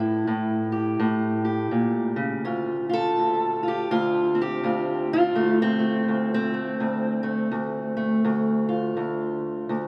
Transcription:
0.00 0.26 A2 medium
0.00 2.42 E4 medium
0.27 0.98 A2 medium
0.72 1.43 G4 medium
1.00 1.71 A2 medium
1.45 2.42 G4 soft
1.71 2.15 A#2 medium
2.16 2.45 C#3 medium
2.45 3.18 D2 medium
2.45 2.89 F4 medium
2.89 3.63 F4 soft
2.89 3.66 A4 loud
3.19 3.90 D2 medium
3.63 3.91 F4 soft
3.68 3.91 G4 medium
3.91 4.63 D2 medium
3.91 4.39 F4 medium
4.35 5.35 C4 soft
4.41 5.12 G4 medium
4.64 5.35 D2 medium
4.64 5.13 F4 medium
5.13 5.60 F4 medium
5.35 6.08 D2 medium
5.35 5.79 A3 medium
5.62 6.33 C4 medium
5.79 6.53 A3 soft
6.08 6.80 D2 medium
6.34 8.50 C4 medium
6.54 7.23 A3 soft
6.80 7.51 D2 medium
7.23 7.96 A3 medium
7.51 8.24 D2 medium
7.97 9.88 A3 medium
8.25 8.96 D2 medium
8.69 9.88 F4 medium
8.97 9.69 D2 medium
9.69 9.88 D2 medium

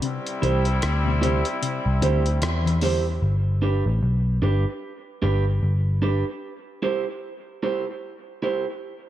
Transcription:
0.02 0.18 C3 medium
0.02 2.78 G3 medium
0.02 2.78 C4 medium
0.02 2.78 E4 medium
0.02 closed hi-hat medium
0.27 closed hi-hat medium
0.42 0.79 C2 loud
0.42 0.58 E3 medium
0.42 0.64 E4 medium
0.42 0.64 G4 medium
0.42 0.64 C5 medium
0.42 closed hi-hat medium
0.65 closed hi-hat soft
0.82 1.42 D2 medium
0.82 cross-stick loud
0.82 closed hi-hat loud
1.05 1.16 B2 medium
1.21 1.38 C3 medium
1.21 1.43 E4 medium
1.21 1.44 G4 medium
1.21 1.44 C5 medium
1.21 closed hi-hat medium
1.45 closed hi-hat medium
1.62 1.78 C3 medium
1.62 closed hi-hat medium
1.86 2.01 C2 medium
2.02 2.39 D2 medium
2.02 2.18 D3 medium
2.02 2.24 E4 medium
2.02 2.24 G4 medium
2.02 2.24 C5 medium
2.02 closed hi-hat medium
2.26 closed hi-hat medium
2.42 3.18 E2 medium
2.42 2.58 E3 medium
2.42 cross-stick loud
2.42 closed hi-hat medium
2.65 2.77 E3 medium
2.65 closed hi-hat medium
2.81 2.98 D3 medium
2.81 3.04 E4 medium
2.81 3.04 G4 medium
2.81 3.04 C5 loud
2.81 open hi-hat medium
3.22 3.82 G1 medium
3.62 3.84 D4 medium
3.62 3.84 G4 medium
3.62 3.84 B4 medium
3.86 4.01 A1 medium
4.03 4.39 B1 medium
4.42 4.64 G1 medium
4.42 4.64 D4 medium
4.42 4.64 G4 medium
4.42 4.64 B4 medium
5.22 5.59 G1 medium
5.22 5.44 D4 medium
5.22 5.44 G4 medium
5.22 5.45 B4 loud
5.63 6.22 G1 medium
6.02 6.24 D4 medium
6.02 6.24 G4 medium
6.02 6.24 B4 medium
6.82 7.04 E4 medium
6.82 7.04 G4 medium
6.82 7.05 C5 medium
7.63 7.84 E4 medium
7.63 7.85 G4 medium
7.63 7.85 C5 medium
8.43 8.64 E4 medium
8.43 8.65 G4 medium
8.43 8.65 C5 medium

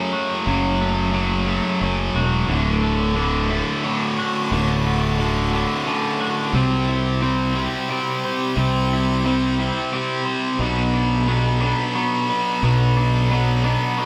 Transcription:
0.00 0.12 F#2 medium
0.00 0.44 F#2 loud
0.00 0.45 C#3 loud
0.00 0.46 F#3 loud
0.00 1.14 F#3 medium
0.00 0.81 A3 medium
0.00 1.82 C#4 medium
0.13 2.15 F#4 medium
0.45 1.59 F#1 loud
0.45 1.11 F#2 loud
0.45 2.15 F#2 medium
0.45 1.11 C#3 loud
0.45 1.13 F#3 loud
0.81 1.48 A3 medium
1.12 1.45 F#2 medium
1.12 1.46 C#3 loud
1.12 1.47 F#3 loud
1.12 3.16 F#3 medium
1.46 1.79 F#2 medium
1.46 1.81 C#3 medium
1.46 1.82 F#3 loud
1.46 2.83 A3 medium
1.81 2.11 F#1 medium
1.81 2.46 F#2 medium
1.81 2.47 C#3 medium
1.81 2.49 F#3 loud
1.81 2.52 C#4 medium
2.14 2.45 E1 medium
2.14 4.18 F#4 medium
2.48 3.62 D1 loud
2.48 3.15 D2 loud
2.48 4.17 D2 medium
2.48 3.15 A2 loud
2.48 3.17 D3 loud
2.48 6.50 F#4 medium
2.48 6.51 C#5 medium
2.48 6.50 F#5 medium
2.48 6.50 A5 medium
2.83 3.49 A3 medium
3.15 3.49 D2 medium
3.15 3.50 A2 medium
3.15 4.85 D3 medium
3.15 3.50 D3 loud
3.50 3.82 D2 medium
3.50 3.83 A2 loud
3.50 3.84 D3 medium
3.50 4.85 A3 medium
3.84 4.49 D2 loud
3.84 4.51 A2 loud
3.84 4.51 D3 loud
3.84 5.53 C#4 medium
4.18 5.87 F#4 medium
4.51 5.64 D1 loud
4.51 5.17 D2 loud
4.51 6.21 D2 medium
4.51 5.18 A2 loud
4.51 5.19 D3 loud
4.87 5.52 A3 medium
5.18 5.50 D2 medium
5.18 5.51 A2 medium
5.18 6.54 D3 medium
5.18 5.52 D3 loud
5.52 5.84 D2 medium
5.52 5.85 A2 loud
5.52 5.85 D3 loud
5.52 6.54 A3 medium
5.85 6.51 D2 medium
5.85 6.52 A2 loud
5.85 6.52 D3 loud
5.85 6.54 C#4 medium
6.20 6.54 F#4 medium
6.52 7.67 C2 loud
6.52 7.21 C3 loud
6.52 8.23 C3 medium
6.52 7.21 G3 loud
6.52 7.22 C4 loud
6.52 10.55 G4 medium
6.52 10.55 C5 medium
6.52 10.55 E5 medium
6.52 14.05 B5 medium
6.88 7.55 E4 medium
7.21 7.53 C3 medium
7.21 7.54 G3 loud
7.21 8.91 C4 medium
7.21 7.54 C4 loud
7.54 7.88 C3 loud
7.54 7.88 G3 medium
7.54 7.89 C4 loud
7.54 8.92 E4 medium
7.89 8.55 C3 loud
7.89 8.55 G3 loud
7.89 8.56 C4 loud
7.89 9.59 G4 medium
8.25 9.93 C5 medium
8.56 9.70 C2 loud
8.56 9.23 C3 loud
8.56 10.27 C3 medium
8.56 9.24 G3 loud
8.56 9.24 C4 loud
8.93 9.59 E4 medium
9.24 9.57 C3 medium
9.24 9.58 G3 medium
9.24 9.58 C4 loud
9.24 10.60 C4 medium
9.58 9.92 C3 medium
9.58 9.92 G3 loud
9.58 9.93 C4 medium
9.58 10.60 E4 medium
9.93 10.58 C3 medium
9.93 10.58 G3 loud
9.93 10.58 C4 loud
9.93 10.60 G4 medium
10.25 10.59 C5 medium
10.59 11.73 B1 loud
10.59 11.27 B2 loud
10.59 12.29 B2 medium
10.59 11.28 F#3 loud
10.59 11.28 B3 loud
10.59 14.05 A4 medium
10.59 14.05 D5 medium
10.59 14.05 F#5 medium
10.94 11.60 D4 medium
11.27 11.60 B2 loud
11.27 11.61 F#3 loud
11.27 12.97 B3 medium
11.27 11.61 B3 loud
11.61 11.93 B2 medium
11.61 11.94 F#3 medium
11.61 11.94 B3 medium
11.61 12.96 D4 medium
11.94 12.61 B2 loud
11.94 12.63 F#3 loud
11.94 12.62 B3 loud
11.94 13.97 F#4 medium
12.30 13.98 B4 medium
12.62 13.76 B1 loud
12.62 13.29 B2 loud
12.62 14.05 B2 medium
12.62 13.30 F#3 loud
12.62 13.30 B3 loud
12.97 13.63 D4 medium
13.30 13.62 B2 medium
13.30 13.64 F#3 medium
13.30 14.05 B3 medium
13.30 13.64 B3 loud
13.64 13.97 B2 medium
13.64 13.98 F#3 medium
13.64 13.98 B3 loud
13.64 14.05 D4 medium
13.98 14.05 B2 loud
13.98 14.05 F#3 medium
13.98 14.05 B3 loud
13.98 14.05 F#4 medium

